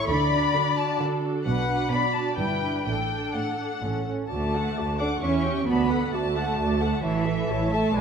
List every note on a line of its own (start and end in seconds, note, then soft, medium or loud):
0.08 0.47 D2 medium
0.08 0.47 D3 medium
0.08 0.99 D5 medium
0.08 0.75 B5 medium
0.32 0.75 D4 soft
0.32 0.75 F#4 soft
0.54 0.92 D3 medium
0.76 1.22 D4 soft
0.76 1.21 F#4 soft
0.76 0.99 A5 medium
1.00 1.39 D3 medium
1.00 1.47 A4 medium
1.22 1.45 D4 soft
1.22 1.45 F#4 soft
1.45 1.84 B1 medium
1.45 1.85 B2 medium
1.45 1.69 D4 soft
1.45 1.69 F#4 soft
1.45 1.91 B4 soft
1.45 1.89 F#5 medium
1.70 2.14 D4 soft
1.70 2.14 F#4 soft
1.91 2.31 B2 soft
1.91 2.39 D5 soft
1.91 2.15 B5 medium
2.14 2.37 D4 soft
2.14 2.38 F#4 soft
2.14 2.38 A5 medium
2.37 2.79 G1 soft
2.37 2.79 G2 soft
2.37 2.62 D4 soft
2.37 2.62 E4 soft
2.37 2.86 B4 soft
2.37 2.84 G5 soft
2.63 2.86 D4 soft
2.63 2.86 E4 soft
2.85 3.27 A1 soft
2.85 3.27 A2 soft
2.85 3.10 D4 soft
2.85 4.07 A4 soft
2.85 3.10 A4 soft
2.85 3.34 G5 medium
3.11 3.58 D4 soft
3.11 3.58 A4 soft
3.35 3.75 A2 soft
3.35 4.06 F#5 soft
3.59 3.83 D4 soft
3.59 3.82 A4 soft
3.83 4.23 A1 soft
3.83 4.23 A2 soft
3.83 4.06 C#4 soft
3.83 4.06 A4 soft
4.07 4.30 C#4 soft
4.07 4.30 A4 soft
4.30 4.72 D2 soft
4.30 4.96 A3 soft
4.30 4.52 F#4 soft
4.30 4.52 D5 soft
4.30 4.52 A5 soft
4.30 4.96 A5 soft
4.54 4.77 A4 soft
4.54 4.77 F#5 soft
4.77 5.17 D2 soft
4.77 5.00 F#4 soft
4.77 5.00 D5 soft
4.77 5.00 A5 soft
4.99 5.08 D4 soft
4.99 5.22 A4 soft
4.99 5.22 F#5 soft
4.99 5.22 D6 soft
5.22 5.62 E2 soft
5.22 5.67 C#4 medium
5.22 5.43 E4 soft
5.22 5.43 C#5 soft
5.22 5.43 E5 soft
5.22 5.67 C#6 soft
5.45 5.68 G4 soft
5.45 5.68 E5 soft
5.45 5.68 G5 soft
5.67 6.08 D2 soft
5.67 6.13 B3 medium
5.67 5.89 F#4 soft
5.67 5.89 D5 soft
5.67 5.89 A5 soft
5.67 6.13 B5 soft
5.90 6.14 A4 soft
5.90 6.13 F#5 soft
5.90 6.14 F#5 soft
6.13 6.54 D2 soft
6.13 7.02 A3 soft
6.13 6.36 F#4 soft
6.13 6.36 D5 soft
6.13 7.02 A5 soft
6.13 6.37 A5 soft
6.36 6.59 A4 soft
6.36 6.59 F#5 soft
6.59 6.99 D2 soft
6.59 6.80 F#4 soft
6.59 6.80 D5 soft
6.59 6.80 A5 soft
6.81 7.04 A4 soft
6.81 7.04 F#5 soft
7.03 7.43 A1 soft
7.03 7.71 E3 medium
7.03 7.25 E4 soft
7.03 7.25 C#5 soft
7.03 7.70 E5 medium
7.03 7.25 A5 soft
7.26 7.49 A4 soft
7.26 7.49 E5 soft
7.26 7.50 E5 soft
7.49 7.89 A1 soft
7.49 7.72 E4 soft
7.49 7.72 C#5 soft
7.49 7.72 A5 soft
7.72 7.94 A3 medium
7.72 7.94 A4 soft
7.72 7.94 E5 soft
7.72 7.95 E5 soft
7.72 7.95 A5 medium
7.93 8.01 B1 medium
7.93 8.01 G#3 medium
7.93 8.01 B4 soft
7.93 8.01 D5 soft
7.93 8.01 G#5 medium